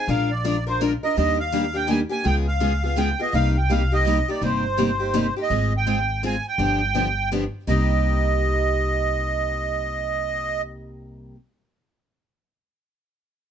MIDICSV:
0, 0, Header, 1, 4, 480
1, 0, Start_track
1, 0, Key_signature, -3, "minor"
1, 0, Tempo, 361882
1, 107, Time_signature, 3, 2, 24, 8
1, 17917, End_track
2, 0, Start_track
2, 0, Title_t, "Accordion"
2, 0, Program_c, 0, 21
2, 124, Note_on_c, 0, 77, 96
2, 411, Note_on_c, 0, 74, 82
2, 421, Note_off_c, 0, 77, 0
2, 854, Note_off_c, 0, 74, 0
2, 902, Note_on_c, 0, 72, 90
2, 1080, Note_on_c, 0, 70, 80
2, 1082, Note_off_c, 0, 72, 0
2, 1210, Note_off_c, 0, 70, 0
2, 1378, Note_on_c, 0, 75, 91
2, 1541, Note_off_c, 0, 75, 0
2, 1561, Note_on_c, 0, 75, 95
2, 1830, Note_off_c, 0, 75, 0
2, 1855, Note_on_c, 0, 77, 91
2, 2337, Note_on_c, 0, 79, 103
2, 2343, Note_off_c, 0, 77, 0
2, 2512, Note_on_c, 0, 80, 93
2, 2519, Note_off_c, 0, 79, 0
2, 2644, Note_off_c, 0, 80, 0
2, 2801, Note_on_c, 0, 80, 101
2, 2989, Note_on_c, 0, 79, 99
2, 2991, Note_off_c, 0, 80, 0
2, 3122, Note_off_c, 0, 79, 0
2, 3286, Note_on_c, 0, 77, 88
2, 3752, Note_off_c, 0, 77, 0
2, 3772, Note_on_c, 0, 77, 93
2, 3938, Note_off_c, 0, 77, 0
2, 3951, Note_on_c, 0, 79, 85
2, 4253, Note_off_c, 0, 79, 0
2, 4264, Note_on_c, 0, 75, 84
2, 4424, Note_off_c, 0, 75, 0
2, 4439, Note_on_c, 0, 77, 101
2, 4737, Note_off_c, 0, 77, 0
2, 4741, Note_on_c, 0, 79, 75
2, 4919, Note_on_c, 0, 77, 89
2, 4920, Note_off_c, 0, 79, 0
2, 5217, Note_off_c, 0, 77, 0
2, 5220, Note_on_c, 0, 75, 93
2, 5702, Note_on_c, 0, 74, 85
2, 5704, Note_off_c, 0, 75, 0
2, 5863, Note_off_c, 0, 74, 0
2, 5894, Note_on_c, 0, 72, 81
2, 7082, Note_off_c, 0, 72, 0
2, 7188, Note_on_c, 0, 75, 90
2, 7603, Note_off_c, 0, 75, 0
2, 7653, Note_on_c, 0, 79, 94
2, 8246, Note_off_c, 0, 79, 0
2, 8306, Note_on_c, 0, 80, 91
2, 8562, Note_off_c, 0, 80, 0
2, 8598, Note_on_c, 0, 79, 101
2, 9671, Note_off_c, 0, 79, 0
2, 10197, Note_on_c, 0, 75, 83
2, 14080, Note_off_c, 0, 75, 0
2, 17917, End_track
3, 0, Start_track
3, 0, Title_t, "Steel-string acoustic guitar"
3, 0, Program_c, 1, 25
3, 108, Note_on_c, 1, 53, 69
3, 118, Note_on_c, 1, 56, 68
3, 118, Note_on_c, 1, 62, 67
3, 118, Note_on_c, 1, 65, 60
3, 118, Note_on_c, 1, 70, 69
3, 386, Note_off_c, 1, 53, 0
3, 391, Note_off_c, 1, 56, 0
3, 391, Note_off_c, 1, 62, 0
3, 391, Note_off_c, 1, 65, 0
3, 391, Note_off_c, 1, 70, 0
3, 589, Note_on_c, 1, 53, 73
3, 592, Note_on_c, 1, 56, 74
3, 595, Note_on_c, 1, 65, 92
3, 599, Note_on_c, 1, 70, 92
3, 600, Note_on_c, 1, 62, 83
3, 735, Note_off_c, 1, 53, 0
3, 737, Note_off_c, 1, 56, 0
3, 739, Note_off_c, 1, 65, 0
3, 740, Note_off_c, 1, 70, 0
3, 741, Note_off_c, 1, 62, 0
3, 884, Note_on_c, 1, 70, 60
3, 895, Note_on_c, 1, 65, 50
3, 903, Note_on_c, 1, 62, 48
3, 1060, Note_off_c, 1, 62, 0
3, 1060, Note_off_c, 1, 70, 0
3, 1066, Note_off_c, 1, 65, 0
3, 1070, Note_on_c, 1, 53, 79
3, 1073, Note_on_c, 1, 56, 80
3, 1076, Note_on_c, 1, 62, 93
3, 1080, Note_on_c, 1, 70, 84
3, 1083, Note_on_c, 1, 65, 95
3, 1216, Note_off_c, 1, 53, 0
3, 1218, Note_off_c, 1, 56, 0
3, 1219, Note_off_c, 1, 62, 0
3, 1221, Note_off_c, 1, 70, 0
3, 1222, Note_off_c, 1, 65, 0
3, 1368, Note_on_c, 1, 70, 59
3, 1384, Note_on_c, 1, 65, 49
3, 1391, Note_on_c, 1, 62, 41
3, 1542, Note_off_c, 1, 70, 0
3, 1545, Note_off_c, 1, 62, 0
3, 1548, Note_on_c, 1, 51, 59
3, 1550, Note_off_c, 1, 65, 0
3, 1556, Note_on_c, 1, 55, 67
3, 1557, Note_on_c, 1, 58, 71
3, 1561, Note_on_c, 1, 62, 79
3, 1565, Note_on_c, 1, 67, 65
3, 1826, Note_off_c, 1, 51, 0
3, 1830, Note_off_c, 1, 55, 0
3, 1830, Note_off_c, 1, 58, 0
3, 1832, Note_off_c, 1, 62, 0
3, 1834, Note_off_c, 1, 67, 0
3, 2021, Note_on_c, 1, 51, 85
3, 2022, Note_on_c, 1, 55, 81
3, 2032, Note_on_c, 1, 62, 84
3, 2033, Note_on_c, 1, 58, 79
3, 2039, Note_on_c, 1, 67, 83
3, 2171, Note_off_c, 1, 51, 0
3, 2172, Note_off_c, 1, 55, 0
3, 2177, Note_off_c, 1, 58, 0
3, 2177, Note_off_c, 1, 62, 0
3, 2180, Note_off_c, 1, 67, 0
3, 2301, Note_on_c, 1, 67, 56
3, 2314, Note_on_c, 1, 62, 54
3, 2325, Note_on_c, 1, 58, 47
3, 2474, Note_off_c, 1, 58, 0
3, 2478, Note_off_c, 1, 62, 0
3, 2481, Note_off_c, 1, 67, 0
3, 2481, Note_on_c, 1, 51, 81
3, 2489, Note_on_c, 1, 55, 77
3, 2490, Note_on_c, 1, 58, 92
3, 2494, Note_on_c, 1, 62, 86
3, 2497, Note_on_c, 1, 67, 91
3, 2641, Note_off_c, 1, 51, 0
3, 2645, Note_off_c, 1, 55, 0
3, 2645, Note_off_c, 1, 58, 0
3, 2647, Note_off_c, 1, 62, 0
3, 2649, Note_off_c, 1, 67, 0
3, 2777, Note_on_c, 1, 67, 58
3, 2791, Note_on_c, 1, 62, 62
3, 2803, Note_on_c, 1, 58, 46
3, 2966, Note_off_c, 1, 58, 0
3, 2966, Note_off_c, 1, 67, 0
3, 2967, Note_on_c, 1, 49, 62
3, 2972, Note_on_c, 1, 59, 74
3, 2973, Note_off_c, 1, 62, 0
3, 2974, Note_on_c, 1, 56, 61
3, 2982, Note_on_c, 1, 65, 68
3, 2984, Note_on_c, 1, 68, 76
3, 3255, Note_off_c, 1, 49, 0
3, 3257, Note_off_c, 1, 59, 0
3, 3258, Note_off_c, 1, 56, 0
3, 3262, Note_off_c, 1, 65, 0
3, 3263, Note_off_c, 1, 68, 0
3, 3451, Note_on_c, 1, 49, 79
3, 3453, Note_on_c, 1, 56, 80
3, 3453, Note_on_c, 1, 59, 82
3, 3463, Note_on_c, 1, 65, 87
3, 3463, Note_on_c, 1, 68, 84
3, 3606, Note_off_c, 1, 49, 0
3, 3607, Note_off_c, 1, 56, 0
3, 3607, Note_off_c, 1, 59, 0
3, 3612, Note_off_c, 1, 65, 0
3, 3612, Note_off_c, 1, 68, 0
3, 3760, Note_on_c, 1, 68, 56
3, 3766, Note_on_c, 1, 65, 49
3, 3780, Note_on_c, 1, 59, 46
3, 3933, Note_off_c, 1, 59, 0
3, 3937, Note_off_c, 1, 68, 0
3, 3940, Note_off_c, 1, 65, 0
3, 3941, Note_on_c, 1, 49, 82
3, 3945, Note_on_c, 1, 56, 91
3, 3949, Note_on_c, 1, 59, 94
3, 3953, Note_on_c, 1, 68, 92
3, 3957, Note_on_c, 1, 65, 95
3, 4091, Note_off_c, 1, 49, 0
3, 4092, Note_off_c, 1, 56, 0
3, 4095, Note_off_c, 1, 59, 0
3, 4097, Note_off_c, 1, 68, 0
3, 4099, Note_off_c, 1, 65, 0
3, 4237, Note_on_c, 1, 68, 59
3, 4245, Note_on_c, 1, 65, 56
3, 4254, Note_on_c, 1, 59, 52
3, 4416, Note_off_c, 1, 68, 0
3, 4420, Note_off_c, 1, 65, 0
3, 4424, Note_off_c, 1, 59, 0
3, 4429, Note_on_c, 1, 48, 63
3, 4431, Note_on_c, 1, 55, 65
3, 4436, Note_on_c, 1, 58, 66
3, 4441, Note_on_c, 1, 63, 72
3, 4441, Note_on_c, 1, 67, 78
3, 4706, Note_off_c, 1, 48, 0
3, 4707, Note_off_c, 1, 55, 0
3, 4709, Note_off_c, 1, 58, 0
3, 4711, Note_off_c, 1, 67, 0
3, 4712, Note_off_c, 1, 63, 0
3, 4912, Note_on_c, 1, 48, 72
3, 4913, Note_on_c, 1, 55, 81
3, 4916, Note_on_c, 1, 58, 78
3, 4917, Note_on_c, 1, 63, 90
3, 4921, Note_on_c, 1, 67, 89
3, 5056, Note_off_c, 1, 48, 0
3, 5056, Note_off_c, 1, 55, 0
3, 5058, Note_off_c, 1, 58, 0
3, 5058, Note_off_c, 1, 63, 0
3, 5060, Note_off_c, 1, 67, 0
3, 5197, Note_on_c, 1, 67, 57
3, 5212, Note_on_c, 1, 63, 54
3, 5222, Note_on_c, 1, 58, 46
3, 5376, Note_off_c, 1, 67, 0
3, 5383, Note_off_c, 1, 63, 0
3, 5384, Note_off_c, 1, 58, 0
3, 5393, Note_on_c, 1, 48, 74
3, 5399, Note_on_c, 1, 55, 84
3, 5400, Note_on_c, 1, 58, 82
3, 5407, Note_on_c, 1, 63, 98
3, 5409, Note_on_c, 1, 67, 85
3, 5536, Note_off_c, 1, 48, 0
3, 5540, Note_off_c, 1, 55, 0
3, 5540, Note_off_c, 1, 58, 0
3, 5544, Note_off_c, 1, 63, 0
3, 5545, Note_off_c, 1, 67, 0
3, 5681, Note_on_c, 1, 67, 57
3, 5696, Note_on_c, 1, 63, 52
3, 5702, Note_on_c, 1, 58, 45
3, 5857, Note_off_c, 1, 58, 0
3, 5858, Note_off_c, 1, 67, 0
3, 5860, Note_off_c, 1, 63, 0
3, 5867, Note_on_c, 1, 48, 69
3, 5869, Note_on_c, 1, 55, 67
3, 5873, Note_on_c, 1, 58, 60
3, 5876, Note_on_c, 1, 63, 74
3, 5877, Note_on_c, 1, 67, 64
3, 6145, Note_off_c, 1, 48, 0
3, 6145, Note_off_c, 1, 55, 0
3, 6147, Note_off_c, 1, 58, 0
3, 6149, Note_off_c, 1, 63, 0
3, 6150, Note_off_c, 1, 67, 0
3, 6334, Note_on_c, 1, 48, 83
3, 6337, Note_on_c, 1, 55, 81
3, 6342, Note_on_c, 1, 58, 87
3, 6345, Note_on_c, 1, 63, 85
3, 6347, Note_on_c, 1, 67, 80
3, 6487, Note_off_c, 1, 48, 0
3, 6488, Note_off_c, 1, 55, 0
3, 6491, Note_off_c, 1, 58, 0
3, 6493, Note_off_c, 1, 63, 0
3, 6493, Note_off_c, 1, 67, 0
3, 6627, Note_on_c, 1, 67, 63
3, 6643, Note_on_c, 1, 63, 49
3, 6654, Note_on_c, 1, 58, 46
3, 6799, Note_off_c, 1, 58, 0
3, 6807, Note_off_c, 1, 63, 0
3, 6811, Note_off_c, 1, 67, 0
3, 6811, Note_on_c, 1, 48, 89
3, 6815, Note_on_c, 1, 55, 81
3, 6815, Note_on_c, 1, 58, 85
3, 6823, Note_on_c, 1, 63, 88
3, 6824, Note_on_c, 1, 67, 91
3, 6966, Note_off_c, 1, 48, 0
3, 6967, Note_off_c, 1, 55, 0
3, 6967, Note_off_c, 1, 58, 0
3, 6972, Note_off_c, 1, 63, 0
3, 6972, Note_off_c, 1, 67, 0
3, 7117, Note_on_c, 1, 67, 59
3, 7134, Note_on_c, 1, 63, 54
3, 7145, Note_on_c, 1, 58, 46
3, 7295, Note_off_c, 1, 58, 0
3, 7295, Note_off_c, 1, 67, 0
3, 7298, Note_on_c, 1, 56, 60
3, 7300, Note_on_c, 1, 60, 71
3, 7302, Note_off_c, 1, 63, 0
3, 7307, Note_on_c, 1, 65, 65
3, 7311, Note_on_c, 1, 68, 82
3, 7580, Note_off_c, 1, 56, 0
3, 7581, Note_off_c, 1, 60, 0
3, 7585, Note_off_c, 1, 65, 0
3, 7587, Note_off_c, 1, 68, 0
3, 7781, Note_on_c, 1, 56, 81
3, 7783, Note_on_c, 1, 60, 77
3, 7787, Note_on_c, 1, 65, 84
3, 7794, Note_on_c, 1, 68, 82
3, 7931, Note_off_c, 1, 56, 0
3, 7931, Note_off_c, 1, 60, 0
3, 7933, Note_off_c, 1, 65, 0
3, 7937, Note_off_c, 1, 68, 0
3, 8262, Note_on_c, 1, 56, 74
3, 8267, Note_on_c, 1, 60, 87
3, 8274, Note_on_c, 1, 65, 87
3, 8274, Note_on_c, 1, 68, 95
3, 8411, Note_off_c, 1, 56, 0
3, 8413, Note_off_c, 1, 60, 0
3, 8417, Note_off_c, 1, 65, 0
3, 8417, Note_off_c, 1, 68, 0
3, 8738, Note_on_c, 1, 50, 67
3, 8744, Note_on_c, 1, 59, 75
3, 8745, Note_on_c, 1, 53, 73
3, 8747, Note_on_c, 1, 62, 71
3, 8748, Note_on_c, 1, 67, 75
3, 9020, Note_off_c, 1, 50, 0
3, 9023, Note_off_c, 1, 53, 0
3, 9023, Note_off_c, 1, 59, 0
3, 9024, Note_off_c, 1, 62, 0
3, 9025, Note_off_c, 1, 67, 0
3, 9213, Note_on_c, 1, 50, 77
3, 9215, Note_on_c, 1, 53, 75
3, 9223, Note_on_c, 1, 59, 81
3, 9223, Note_on_c, 1, 62, 78
3, 9228, Note_on_c, 1, 67, 86
3, 9366, Note_off_c, 1, 50, 0
3, 9367, Note_off_c, 1, 53, 0
3, 9371, Note_off_c, 1, 59, 0
3, 9372, Note_off_c, 1, 62, 0
3, 9374, Note_off_c, 1, 67, 0
3, 9705, Note_on_c, 1, 50, 86
3, 9713, Note_on_c, 1, 53, 78
3, 9715, Note_on_c, 1, 62, 90
3, 9718, Note_on_c, 1, 59, 73
3, 9721, Note_on_c, 1, 67, 88
3, 9852, Note_off_c, 1, 50, 0
3, 9857, Note_off_c, 1, 53, 0
3, 9857, Note_off_c, 1, 62, 0
3, 9859, Note_off_c, 1, 59, 0
3, 9860, Note_off_c, 1, 67, 0
3, 10178, Note_on_c, 1, 48, 78
3, 10186, Note_on_c, 1, 55, 69
3, 10198, Note_on_c, 1, 58, 80
3, 10204, Note_on_c, 1, 63, 82
3, 10216, Note_on_c, 1, 67, 93
3, 15052, Note_off_c, 1, 48, 0
3, 15056, Note_off_c, 1, 55, 0
3, 15062, Note_off_c, 1, 58, 0
3, 15065, Note_off_c, 1, 63, 0
3, 15071, Note_off_c, 1, 67, 0
3, 17917, End_track
4, 0, Start_track
4, 0, Title_t, "Upright bass"
4, 0, Program_c, 2, 32
4, 101, Note_on_c, 2, 34, 86
4, 1255, Note_off_c, 2, 34, 0
4, 1554, Note_on_c, 2, 39, 85
4, 2703, Note_off_c, 2, 39, 0
4, 2985, Note_on_c, 2, 37, 81
4, 4137, Note_off_c, 2, 37, 0
4, 4419, Note_on_c, 2, 36, 86
4, 5573, Note_off_c, 2, 36, 0
4, 5855, Note_on_c, 2, 31, 79
4, 7011, Note_off_c, 2, 31, 0
4, 7297, Note_on_c, 2, 32, 83
4, 8452, Note_off_c, 2, 32, 0
4, 8730, Note_on_c, 2, 31, 85
4, 9888, Note_off_c, 2, 31, 0
4, 10180, Note_on_c, 2, 36, 80
4, 15000, Note_off_c, 2, 36, 0
4, 17917, End_track
0, 0, End_of_file